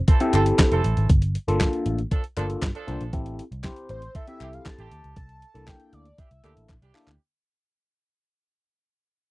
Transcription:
0.08 E3 C4 A4, kick, closed hi-hat
0.20 C4 E4 G4 A4, closed hi-hat
0.33 G1 E3 C4 A4, clap, closed hi-hat
0.46 closed hi-hat
0.59 kick, snare, clap, closed hi-hat
0.72 F1 E3 C4 A4, closed hi-hat
0.84 A1, closed hi-hat
0.97 G#1, closed hi-hat
1.09 G1, kick, closed hi-hat
1.22 closed hi-hat
1.35 closed hi-hat
1.48 G1 A#3 D4 F4 A4, closed hi-hat
1.60 kick, snare, clap, closed hi-hat
1.73 closed hi-hat
1.86 A1, closed hi-hat
1.98 closed hi-hat
2.11 F3 D4 A4, kick, closed hi-hat
2.24 closed hi-hat
2.37 G1 F3 A#3 D4 F4 A4, clap, closed hi-hat
2.50 closed hi-hat
2.62 G2, kick, snare, clap, closed hi-hat
2.75 F3 D4 A4, closed hi-hat
2.87 C2 A#3 D4 F4 C5, closed hi-hat
3.01 A#1, closed hi-hat
3.13 A1 C4 E4 G4 A4, kick, closed hi-hat
3.26 closed hi-hat
3.39 closed hi-hat
3.52 C2, closed hi-hat
3.64 C4 E4 G4 C5, kick, snare, clap, closed hi-hat
3.76 closed hi-hat
3.89 A1 C5, closed hi-hat
4.02 closed hi-hat
4.15 E3 C4 A4 E5, kick, closed hi-hat
4.27 C4 E4 G4 A4, closed hi-hat
4.40 C2 E3 C4 G4, clap, closed hi-hat
4.53 F5, closed hi-hat
4.65 A5, kick, snare, clap, closed hi-hat
4.78 A1 E3 C4 G4, closed hi-hat
4.91 D2, closed hi-hat
5.04 C#2, closed hi-hat
5.16 C2 A5, kick, closed hi-hat
5.29 closed hi-hat
5.42 closed hi-hat
5.54 C2 A#3 D4 E4 A4, closed hi-hat
5.67 G5, kick, snare, clap, closed hi-hat
5.80 closed hi-hat
5.93 D2 D5, closed hi-hat
6.05 closed hi-hat
6.18 E3 D4 G4 E5, kick, closed hi-hat
6.31 C2, closed hi-hat
6.43 D2 E3 A#3 D4 E4 G4 A4, clap, closed hi-hat
6.57 A1, closed hi-hat
6.69 A#1, kick, clap, closed hi-hat
6.82 C2 E3 D4 G4, closed hi-hat
6.94 A#3 D4 E4 A4, clap, open hi-hat
7.07 D2, clap, closed hi-hat

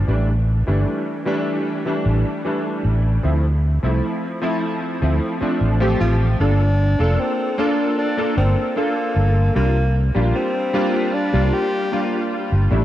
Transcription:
0.08 A1 E3 G3 A3 D4
0.67 G1 E3 G3 A3 D4
1.25 E3 G3 A3 D4
1.85 E3 G3 A3 D4
2.06 A1
2.45 E3 G3 A3 D4
2.85 A1
3.23 D2 F3 A3 C4 E4
3.83 C2 F3 A3 C4 E4
4.42 F3 A3 C4 E4
5.02 D2 F3 A3 C4 E4
5.41 F3 A3 C4 D4, muted fretless electric bass stroke
5.61 A1
5.80 F3 A3 C4 G4
6.00 A1 F4
6.39 G1 A#3 D4 F4 A4
6.99 F1 A#3 D4 F4 A4
7.19 C4
7.58 A#3 D4 F4 A4
7.98 D4
8.17 A#3 D4 F4 A4
8.37 G1 C4
8.76 A#3 D4 F4 A4
9.16 G1
9.55 C2 G3 A#3 D4 F4
10.15 A#1 G3 A#3 D4 F4
10.35 C4
10.73 G3 A#3 D4 F4
11.14 D4
11.33 C2 G3 A#3 D4 F4
11.54 G4
11.92 G3 A#3 D4 F4
12.52 G1
12.71 A1 G3 A3 D4 E4

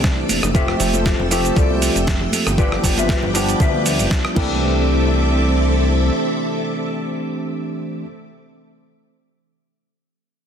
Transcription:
Already playing: C2 E3 A3 C4 D4 G4 A4 D5 D6 E6
0.04 kick, snare, shaker
0.29 F1, open hi-hat, high conga, shaker
0.43 F1, muted clean electric guitar stroke, cross-stick, closed hi-hat, shaker
0.54 F3 A3 C4 F4 G4 A4 E5 G5 E6, kick, closed hi-hat, shaker
0.68 cross-stick
0.80 F1, open hi-hat, high bongo, low conga, shaker
0.94 F4 G4 A4 C5, closed hi-hat, high conga, shaker
1.06 kick, snare, closed hi-hat, high bongo, shaker
1.19 F1, low conga
1.30 F3 A3 C4 G4 E5, open hi-hat, high bongo, shaker
1.45 closed hi-hat, shaker
1.56 C2 F4 G4 A4 D5, kick, closed hi-hat, shaker
1.70 high conga
1.82 open hi-hat, shaker
1.96 F1, closed hi-hat, shaker
2.07 kick, snare, closed hi-hat, shaker
2.21 low conga
2.32 open hi-hat, high conga, shaker
2.46 G1, muted clean electric guitar stroke, cross-stick, closed hi-hat, shaker
2.58 F3 G3 B3 D4 F4 G4 B4 D5 D6, kick, closed hi-hat, shaker
2.72 cross-stick
2.83 G1, kick, open hi-hat, high bongo, low conga, shaker
2.97 F4 G4 B4 E5, closed hi-hat, high conga, shaker
3.09 kick, snare, closed hi-hat, high bongo, shaker
3.23 G1, low conga
3.33 F3 G3 B3 D4 G4, open hi-hat, high bongo, shaker
3.49 closed hi-hat, shaker
3.60 D2 F4 G4 B4 E5, kick, closed hi-hat, shaker
3.75 high conga
3.86 open hi-hat, shaker
3.99 F1, open hi-hat, shaker
4.11 kick, snare, shaker
4.25 cross-stick
4.35 C2 E3 A3 C4 D4 E4 G4 A4 E5 D6, kick, crash, high conga
4.39 D5

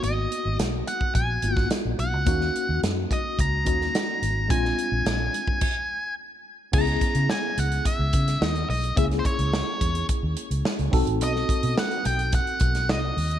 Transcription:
Already playing: A#3 B3 D#4 F#4
0.03 G#1 D#5, closed hi-hat
0.32 closed hi-hat
0.45 G#1
0.59 B1, snare, closed hi-hat
0.88 F#5, closed hi-hat
1.01 kick
1.15 A#1 G#5, kick, closed hi-hat
1.42 G#1 A#3 B3 D#4 F4, closed hi-hat
1.51 F#4
1.57 kick, snare
1.71 snare, closed hi-hat
1.85 A#1
1.99 B1 F#5, closed hi-hat
2.13 C#2
2.26 D#2 A#3 C#4 D#4 F#4, kick, closed hi-hat
2.41 snare
2.56 closed hi-hat
2.69 D#2
2.83 F#2, snare, closed hi-hat
3.11 D#5, kick, closed hi-hat
3.39 C#2 A#5, kick, closed hi-hat
3.65 D#2 A#3 C#4 D#4 F#4, kick, closed hi-hat
3.81 snare
3.95 snare, closed hi-hat
4.22 G#1, closed hi-hat
4.48 A#1 G#3 C4 D4 F4 G#5, kick, closed hi-hat
4.65 snare
4.79 closed hi-hat
4.92 A#1
5.05 A#1, snare, closed hi-hat
5.34 closed hi-hat
5.47 kick
5.61 kick, crash
6.72 C#2 B3 C#4 E4 G#4 A#5, kick, crash
6.87 closed hi-hat
7.01 kick, closed hi-hat
7.15 C#3, closed hi-hat
7.30 G#5, snare
7.58 C#2 F#5, closed hi-hat
7.72 closed hi-hat
7.85 E5, kick, closed hi-hat
7.99 C#2
8.13 C#3, kick, closed hi-hat
8.28 snare, closed hi-hat
8.41 D#2, snare
8.46 D#5
8.55 closed hi-hat
8.69 B1 D#5, open hi-hat
8.84 closed hi-hat
8.96 C#2 A#3 C#4 E4 G#4 E5, kick, closed hi-hat
9.11 snare, closed hi-hat
9.19 C5
9.25 C#5, kick, closed hi-hat
9.39 C#2, closed hi-hat
9.53 snare
9.81 E2, kick, closed hi-hat
9.95 closed hi-hat
10.09 kick, closed hi-hat
10.23 D#2
10.37 closed hi-hat
10.51 C#2, closed hi-hat
10.65 snare
10.79 C#2, closed hi-hat
10.91 B1 C4 D#4 F#4 A4, kick, open hi-hat
11.07 A1, closed hi-hat
11.21 B1 D#5, closed hi-hat
11.36 snare
11.49 kick, closed hi-hat
11.63 B2, closed hi-hat
11.78 F#5, snare
11.91 closed hi-hat
12.05 B1 G5, closed hi-hat
12.19 closed hi-hat
12.32 F#5, kick, closed hi-hat
12.47 closed hi-hat
12.60 B1, kick, closed hi-hat
12.75 snare, closed hi-hat
12.89 C2 D#5, snare
13.17 D#2, open hi-hat
13.31 closed hi-hat

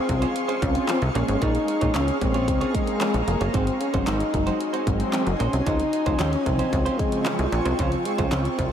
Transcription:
Already playing: C4 G#4 F5 C6 C#6, downlifter
0.09 C2 C4 C#4 F4, muted clean electric guitar stroke, kick, closed hi-hat
0.22 G#3 C#4 F4 C5, closed hi-hat
0.35 muted clean electric guitar stroke, closed hi-hat
0.48 G#3 C#4 F4 G#4 C5, closed hi-hat
0.62 C#2 C4 C#4 F4, muted clean electric guitar stroke, kick, closed hi-hat
0.75 muted clean electric guitar stroke, closed hi-hat
0.88 C4, snare, clap, closed hi-hat
1.02 C2, muted clean electric guitar stroke, closed hi-hat
1.15 A#1 G#3 A#3 C#4 F4 G#4 C#5 A#5, closed hi-hat
1.28 G#1, closed hi-hat
1.41 A#1 A#3 D#4 F4 G#4 C#5, kick, closed hi-hat
1.55 muted clean electric guitar stroke, closed hi-hat
1.68 muted clean electric guitar stroke, closed hi-hat
1.81 A#1 G#3 A#3 C#4 F4 G#4 C#5, kick, closed hi-hat
1.94 C#2 A#3 C#4 F4 G#4 C#5, snare, clap, closed hi-hat
2.08 muted clean electric guitar stroke, closed hi-hat
2.21 A#1 G#3 A#3 C4 C#4, muted clean electric guitar stroke, kick, closed hi-hat
2.34 A#3 F4 G#4 C#5, closed hi-hat
2.48 C#2, muted clean electric guitar stroke, kick, closed hi-hat
2.61 A#3 C#4 F4 G#4 C#5, closed hi-hat
2.74 G#3 A#3 C4, kick, closed hi-hat
2.87 muted clean electric guitar stroke, closed hi-hat
3.00 A#3 F4 G#4 C#5, snare, clap, closed hi-hat
3.14 A#1, closed hi-hat
3.27 F1 A#3, muted clean electric guitar stroke, closed hi-hat
3.40 F#1 A#3 F4 G#4 C#5, closed hi-hat
3.54 G#1 F#3 G#3 C4 D#4 F#4 C5 D#5 G#5 C6, kick, closed hi-hat
3.67 muted clean electric guitar stroke, closed hi-hat
3.80 C#4, muted clean electric guitar stroke, closed hi-hat
3.94 G#1 F#3 G#3 C4 D#4 F#4 C5, kick, closed hi-hat
4.07 G#1 G#3 D#4 F#4 C5, snare, clap, closed hi-hat
4.20 muted clean electric guitar stroke, closed hi-hat
4.33 F#1 F#3 G#3 C4, muted clean electric guitar stroke, kick, closed hi-hat
4.47 G#3 D#4 F#4 C5, closed hi-hat
4.60 muted clean electric guitar stroke, closed hi-hat
4.73 G#3 C4 D#4 F#4 C5, closed hi-hat
4.87 G#1 F#3 G#3 C4, muted clean electric guitar stroke, kick, closed hi-hat
5.00 muted clean electric guitar stroke, closed hi-hat
5.13 C4, snare, clap, closed hi-hat
5.26 F#1, muted clean electric guitar stroke, closed hi-hat
5.33 D#4
5.40 A#1 G#3 C#4 D#4 F#4 C5, closed hi-hat
5.53 C2, muted clean electric guitar stroke, closed hi-hat
5.66 C#2 C#3 F3 G#3 C4 C#4 D#4 F4 C5 C#6, kick, closed hi-hat
5.79 muted clean electric guitar stroke, closed hi-hat
5.93 muted clean electric guitar stroke, closed hi-hat
6.06 C#2 C#3 F3 G#3 C4 C#4 F4 C5, kick, closed hi-hat
6.19 D#2 G#3 C#4 F4 C5, snare, clap, closed hi-hat
6.33 muted clean electric guitar stroke, closed hi-hat
6.46 C2 C#3 F3 C4 D#4, muted clean electric guitar stroke, kick, closed hi-hat
6.59 G#3 C#4 F4 C5, closed hi-hat
6.73 C#2, muted clean electric guitar stroke, kick, closed hi-hat
6.86 F3 G#3 C#4 F4 C5, closed hi-hat
6.99 C#3 F3 G#3 C4, muted clean electric guitar stroke, kick, closed hi-hat
7.12 muted clean electric guitar stroke, closed hi-hat
7.25 G#3 C#4 F4 C5, snare, clap, closed hi-hat
7.39 C2, muted clean electric guitar stroke, closed hi-hat
7.52 A#1 F3, muted clean electric guitar stroke, closed hi-hat
7.65 C2 G#3 C#4 F4 C5, closed hi-hat
7.78 C#2 C#3 F3 G#3 C4 C#4 F4 C5 A#5, kick, closed hi-hat
7.92 muted clean electric guitar stroke, closed hi-hat
8.05 G#3, muted clean electric guitar stroke, closed hi-hat
8.18 C#2 C#3 F3 G#3 C4 C#4 F4 C5, kick, closed hi-hat
8.25 C#4
8.31 C#2 G#3 C4 C#4 F4 C5, snare, clap, closed hi-hat
8.45 muted clean electric guitar stroke, closed hi-hat
8.58 C2 C#3 F3 C4, muted clean electric guitar stroke, kick, closed hi-hat

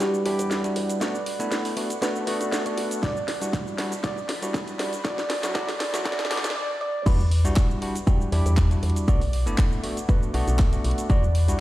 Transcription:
Already playing: B4 D5 F#5
0.00 G3 D4 E4 F#4 G4, snare, closed hi-hat, shaker
0.14 shaker
0.25 E2 G3 D4 E4 G4, open hi-hat
0.39 E2, closed hi-hat, shaker
0.51 snare, shaker
0.64 G3 D4 E4 F#4, closed hi-hat, shaker
0.76 E2, open hi-hat
0.89 closed hi-hat, shaker
1.01 B1 A3 B3 D4 F#4 D5 A5, snare, closed hi-hat, shaker
1.15 shaker
1.26 open hi-hat
1.39 F#1 A3 B3 D4 E4, closed hi-hat, shaker
1.52 snare, closed hi-hat, shaker
1.65 open hi-hat, shaker
1.76 A3 B3 D4 F#4, open hi-hat
1.90 closed hi-hat, shaker
2.02 A3 B3 D4 F#4 B4, snare, closed hi-hat, shaker
2.16 shaker
2.27 B1 A3 B3 D4 F#4, open hi-hat
2.41 B1, closed hi-hat, shaker
2.52 snare, shaker
2.66 A3 B3 D4 F#4, closed hi-hat, shaker
2.78 B1, open hi-hat
2.91 closed hi-hat, shaker
3.02 E2 G3 D4 E4 F#4 D5 B5, kick, snare, closed hi-hat, shaker
3.17 shaker
3.28 snare, open hi-hat
3.41 B1 G3 D4 E4 F#4, closed hi-hat, shaker
3.53 kick, snare, closed hi-hat, shaker
3.67 shaker
3.78 G3 D4 E4 F#4, snare, open hi-hat
3.92 closed hi-hat, shaker
4.03 G3 D4 E4 F#4 D5, kick, snare, closed hi-hat, shaker
4.17 shaker
4.29 E2, snare, open hi-hat
4.42 E2 G3 D4 E4 F#4, closed hi-hat, shaker
4.54 kick, snare, shaker
4.68 closed hi-hat, shaker
4.79 E2 G3 D4 E4 F#4, snare, open hi-hat
4.93 closed hi-hat, shaker
5.04 D2 F#3 D4 E4 F#4 D5 E5 C6, kick, snare, closed hi-hat, shaker
5.18 snare, shaker
5.30 snare, open hi-hat
5.43 F#3 D4 E4 F#4, snare, closed hi-hat, shaker
5.55 F#3 D4 E4 F#4 D5, kick, snare, closed hi-hat, shaker
5.69 snare, open hi-hat, shaker
5.80 snare, open hi-hat
5.93 F#3 D4 E4 F#4, snare, closed hi-hat, shaker
6.05 F#3 D4 E4 F#4 D5, kick, snare, closed hi-hat, shaker
6.12 snare
6.19 snare, shaker
6.25 snare
6.30 D2 F#3 D4 E4 F#4 D5, snare, open hi-hat
6.37 snare
6.44 D2, snare, closed hi-hat, shaker
6.50 snare
6.56 D5
6.81 D5
7.06 E2 G3 D4 E4 F#4 B4 F#5 B5 D6, kick, closed hi-hat, crash, shaker
7.20 shaker
7.32 open hi-hat
7.45 B1 G3 D4 E4 F#4, closed hi-hat, shaker
7.56 kick, clap, closed hi-hat, shaker
7.70 shaker
7.81 G3 D4 E4 F#4, open hi-hat
7.95 closed hi-hat, shaker
8.07 G3 D4 E4 F#4 G4, kick, closed hi-hat, shaker
8.21 shaker
8.32 E2 G3 D4 E4 G4, open hi-hat
8.46 E2, closed hi-hat, shaker
8.57 kick, clap, shaker
8.71 G3 D4 E4 F#4, closed hi-hat, shaker
8.83 E2, open hi-hat
8.90 closed hi-hat
8.96 closed hi-hat, shaker
9.08 B1 A3 B3 D4 F#4 D5 A5, kick, closed hi-hat, shaker
9.21 open hi-hat, shaker
9.33 open hi-hat
9.46 F#1 A3 B3 D4 E4, closed hi-hat, shaker
9.58 kick, clap, closed hi-hat, shaker
9.72 shaker
9.83 A3 B3 D4 F#4, open hi-hat
9.97 closed hi-hat, shaker
10.08 A3 B3 D4 F#4 B4, kick, closed hi-hat, shaker
10.23 shaker
10.34 B1 A3 B3 D4 F#4, open hi-hat
10.47 B1, closed hi-hat, shaker
10.59 kick, clap, shaker
10.72 A3 B3 D4 F#4, closed hi-hat, shaker
10.84 B1, open hi-hat
10.91 closed hi-hat
10.98 closed hi-hat, shaker
11.09 E2 G3 D4 E4 F#4 D5 D6, kick, closed hi-hat, shaker
11.23 shaker
11.35 open hi-hat
11.48 B1 G3 D4 E4 F#4, closed hi-hat, shaker

